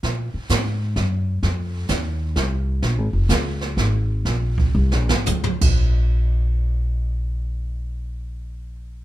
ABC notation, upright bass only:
X:1
M:3/4
L:1/8
Q:"Swing" 1/4=123
K:Bbm
V:1 name="Upright bass" clef=bass
B,, z A,,2 G,,2 | F,,2 E,,2 C,,2 | (3B,,, A,,, F,,, D,,2 A,,,2 | B,,,2 (3C,, B,,, A,,, D,, B,,,- |
B,,,6- | B,,,6 |]